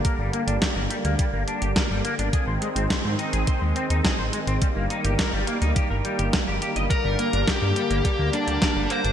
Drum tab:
HH |x-xxx-xxx-xxx-xx|x-xxx-xxx-xxx-xx|x-xxx-xxx-xxx-xx|x-xxx-xxx-xxx-xx|
SD |----o-------o---|----o-------o---|----o-------o---|----o-------o---|
BD |o---o---o---o---|o---o---o---o---|o---o---o---o---|o---o---o---o---|